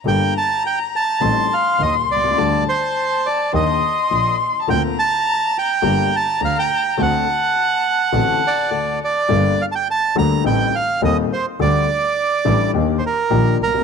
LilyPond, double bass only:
\new Staff \with { instrumentName = "Double bass" } { \clef bass \time 4/4 \key g \minor \tempo 4 = 104 g,,8 r4. a,,8 r8 ees,8 c,8 | d,8 r4. ees,8 r8 bes,,8 r8 | d,8 r4. g,,8 r8 d,8 r8 | d,8 r4. a,,8 r4. |
g,,8 r4 d,8 a,,8 r8 ees,8 r8 | d,8 r4 a,,8 ees,8 r8 bes,,8 c,8 | }